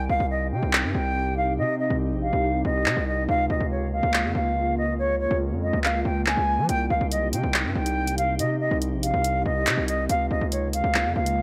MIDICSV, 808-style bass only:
0, 0, Header, 1, 2, 480
1, 0, Start_track
1, 0, Tempo, 425532
1, 1787, Time_signature, 4, 2, 24, 8
1, 12884, End_track
2, 0, Start_track
2, 0, Title_t, "808-style bass"
2, 0, Program_c, 0, 38
2, 106, Note_on_c, 0, 36, 106
2, 222, Note_off_c, 0, 36, 0
2, 227, Note_on_c, 0, 36, 106
2, 586, Note_on_c, 0, 48, 94
2, 603, Note_off_c, 0, 36, 0
2, 700, Note_off_c, 0, 48, 0
2, 706, Note_on_c, 0, 36, 107
2, 946, Note_on_c, 0, 43, 98
2, 963, Note_off_c, 0, 36, 0
2, 1060, Note_off_c, 0, 43, 0
2, 1066, Note_on_c, 0, 36, 104
2, 1787, Note_on_c, 0, 48, 101
2, 1804, Note_off_c, 0, 36, 0
2, 2129, Note_off_c, 0, 48, 0
2, 2147, Note_on_c, 0, 36, 104
2, 2387, Note_on_c, 0, 34, 101
2, 2403, Note_off_c, 0, 36, 0
2, 2614, Note_off_c, 0, 34, 0
2, 2627, Note_on_c, 0, 36, 99
2, 2972, Note_off_c, 0, 36, 0
2, 2986, Note_on_c, 0, 36, 107
2, 3226, Note_on_c, 0, 48, 102
2, 3243, Note_off_c, 0, 36, 0
2, 3340, Note_off_c, 0, 48, 0
2, 3346, Note_on_c, 0, 36, 106
2, 3692, Note_off_c, 0, 36, 0
2, 3707, Note_on_c, 0, 37, 110
2, 3937, Note_off_c, 0, 37, 0
2, 3947, Note_on_c, 0, 37, 106
2, 4062, Note_off_c, 0, 37, 0
2, 4066, Note_on_c, 0, 37, 102
2, 4527, Note_off_c, 0, 37, 0
2, 4547, Note_on_c, 0, 37, 109
2, 4786, Note_on_c, 0, 41, 98
2, 4803, Note_off_c, 0, 37, 0
2, 4900, Note_off_c, 0, 41, 0
2, 4906, Note_on_c, 0, 37, 105
2, 5943, Note_off_c, 0, 37, 0
2, 5987, Note_on_c, 0, 37, 105
2, 6226, Note_on_c, 0, 41, 100
2, 6243, Note_off_c, 0, 37, 0
2, 6454, Note_off_c, 0, 41, 0
2, 6466, Note_on_c, 0, 37, 105
2, 6812, Note_off_c, 0, 37, 0
2, 6826, Note_on_c, 0, 37, 101
2, 7172, Note_off_c, 0, 37, 0
2, 7187, Note_on_c, 0, 37, 108
2, 7426, Note_on_c, 0, 53, 98
2, 7443, Note_off_c, 0, 37, 0
2, 7540, Note_off_c, 0, 53, 0
2, 7546, Note_on_c, 0, 36, 110
2, 7777, Note_off_c, 0, 36, 0
2, 7786, Note_on_c, 0, 36, 107
2, 7899, Note_off_c, 0, 36, 0
2, 7906, Note_on_c, 0, 36, 101
2, 8266, Note_on_c, 0, 48, 96
2, 8283, Note_off_c, 0, 36, 0
2, 8380, Note_off_c, 0, 48, 0
2, 8386, Note_on_c, 0, 36, 107
2, 8626, Note_on_c, 0, 43, 97
2, 8643, Note_off_c, 0, 36, 0
2, 8740, Note_off_c, 0, 43, 0
2, 8747, Note_on_c, 0, 36, 103
2, 9467, Note_on_c, 0, 48, 100
2, 9484, Note_off_c, 0, 36, 0
2, 9809, Note_off_c, 0, 48, 0
2, 9826, Note_on_c, 0, 36, 108
2, 10066, Note_on_c, 0, 34, 103
2, 10083, Note_off_c, 0, 36, 0
2, 10294, Note_off_c, 0, 34, 0
2, 10306, Note_on_c, 0, 36, 103
2, 10652, Note_off_c, 0, 36, 0
2, 10666, Note_on_c, 0, 36, 106
2, 10906, Note_on_c, 0, 48, 99
2, 10923, Note_off_c, 0, 36, 0
2, 11020, Note_off_c, 0, 48, 0
2, 11026, Note_on_c, 0, 36, 102
2, 11372, Note_off_c, 0, 36, 0
2, 11386, Note_on_c, 0, 37, 109
2, 11617, Note_off_c, 0, 37, 0
2, 11626, Note_on_c, 0, 37, 107
2, 11739, Note_off_c, 0, 37, 0
2, 11746, Note_on_c, 0, 37, 104
2, 12207, Note_off_c, 0, 37, 0
2, 12225, Note_on_c, 0, 37, 109
2, 12466, Note_on_c, 0, 41, 94
2, 12483, Note_off_c, 0, 37, 0
2, 12580, Note_off_c, 0, 41, 0
2, 12586, Note_on_c, 0, 37, 103
2, 12884, Note_off_c, 0, 37, 0
2, 12884, End_track
0, 0, End_of_file